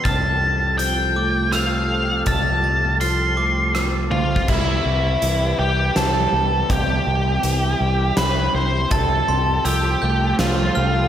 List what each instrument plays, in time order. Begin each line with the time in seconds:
Already playing: string section C3 G4, clean electric guitar E3
0.04 fingered electric bass C2, clean electric guitar C3, string section F3 A4, lead electric guitar A5, glockenspiel F6, kick, closed hi-hat
0.78 clean electric guitar F3, lead electric guitar G5, closed hi-hat
1.15 clean electric guitar A3, glockenspiel D6
1.52 clean electric guitar F3, lead electric guitar F5, glockenspiel E6, cross-stick, closed hi-hat
1.89 clean electric guitar C4
2.26 fingered electric bass C2, clean electric guitar C3, lead electric guitar A5, glockenspiel F6, kick, closed hi-hat
2.64 glockenspiel A6
3.01 clean electric guitar F3, lead electric guitar C6, glockenspiel F6, closed hi-hat
3.37 clean electric guitar A3, glockenspiel D6
3.74 clean electric guitar F3, cross-stick, closed hi-hat
4.10 clean electric guitar C4, lead electric guitar F4, high tom
4.36 kick
4.48 fingered electric bass C2, clean electric guitar C3, string section C3 G3 G4 B4, lead electric guitar E4, kick, crash
4.85 fingered electric bass C2
5.21 fingered electric bass C2, clean electric guitar E3, closed hi-hat
5.58 fingered electric bass C2, clean electric guitar G3, lead electric guitar G4
5.94 fingered electric bass C2, clean electric guitar E3, lead electric guitar A4, snare, closed hi-hat
6.32 fingered electric bass C2, clean electric guitar B3
6.69 fingered electric bass C2, clean electric guitar C3, lead electric guitar G4, string section E5, kick, closed hi-hat
7.07 fingered electric bass C2
7.43 fingered electric bass C2, clean electric guitar E3, closed hi-hat
7.79 fingered electric bass C2, clean electric guitar G3
8.16 fingered electric bass C2, clean electric guitar E3, lead electric guitar B4, snare, closed hi-hat
8.54 fingered electric bass C2, lead electric guitar C5
8.90 fingered electric bass C2, clean electric guitar C3, string section F3 A4, lead electric guitar A4, glockenspiel A6, kick, closed hi-hat
9.28 fingered electric bass C2, glockenspiel C6
9.65 fingered electric bass C2, clean electric guitar F3, lead electric guitar G4, glockenspiel E6, closed hi-hat
10.02 fingered electric bass C2, clean electric guitar A3, glockenspiel G6
10.39 fingered electric bass C2, clean electric guitar F3, lead electric guitar F4, snare, closed hi-hat
10.75 fingered electric bass C2, clean electric guitar C4, glockenspiel F6